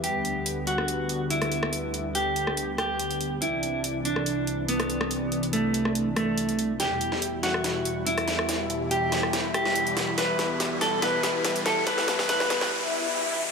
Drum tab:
HH |x-x-x-x-x-x-xxx-|x-x-x-x-x-x-xxx-|x-x-x-x-x-x-xxx-|x-xxx-x-x-x-xxx-|
SD |-------r-----r-r|-------r--r-----|-------r-----r-r|-------r--r-----|

HH |x-x-x-x-x-x-xxx-|x-x-x-x-x-x-xxx-|x-x-x-x-x-x-xxx-|x-x-x-x---------|
SD |o--o--oro----ror|o-----oro-ro--o-|o-o-o-o-o-o-o-o-|oooooooo--------|